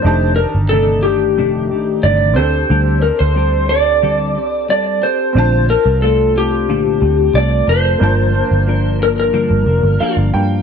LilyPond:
<<
  \new Staff \with { instrumentName = "Electric slide guitar" } { \time 4/4 \key bes \major \tempo 4 = 90 c''8 bes'8 a'8 g'4. d''8 c''8~ | c''8 bes'16 c''8. d''4. d''8 c''8~ | c''8 bes'8 a'8 g'4. d''8 c''8~ | c''4. bes'16 bes'4. r8. | }
  \new Staff \with { instrumentName = "Upright piano" } { \time 4/4 \key bes \major << { r1 | r1 | r1 | r2. f''8 g''8 | } \\ { <d' ees' g' a''>2.~ <d' ees' g' a''>8 <c' d' g' a'>8~ | <c' d' g' a'>2.~ <c' d' g' a'>8 r8 | <c' d' f' a''>1 | <bes d' f' a''>1 | } >> }
  \new Staff \with { instrumentName = "Clean electric guitar" } { \time 4/4 \key bes \major <f, c ees a d'>8 <ees d'>8 <c ees a d'>8 <ees a d'>8 <f, c ees a d'>8 <ees a d'>8 <c ees a d'>8 <c' g' a'>8 | <d g c' g' a'>8 <c' g' a'>8 <g c' g' a'>8 <c' g' a'>8 <d g c' g' a'>8 <c' g' a'>8 <g c' g' a'>8 <c' g' a'>8 | <bes, d a c' f' a'>8 <c' f'>8 <a c' f' a'>8 <a c' f' a'>8 <bes, d a c' f' a'>8 <a c' f' a'>8 <a c' f' a'>8 <a c' f' a'>8 | <g, d f bes d' bes'>8 <f bes d' bes'>8 <f bes d' bes'>8 <f bes d' bes'>8 <g, d f bes d' bes'>8 <f bes d' bes'>8 <f bes d' bes'>8 <f bes d' bes'>8 | }
  \new Staff \with { instrumentName = "Picked electric bass" } { \clef bass \time 4/4 \key bes \major f,,8. g,,4.~ g,,16 a,,8 g,,8 d,8 | d,8. d,4.~ d,16 c,4 a,,8 | bes,,8. c,4.~ c,16 d,8 c,8 f,,8 | g,,8. g,,4~ g,,16 r16 g,,16 f,,16 g,,16 r16 g,,16 g,8 | }
>>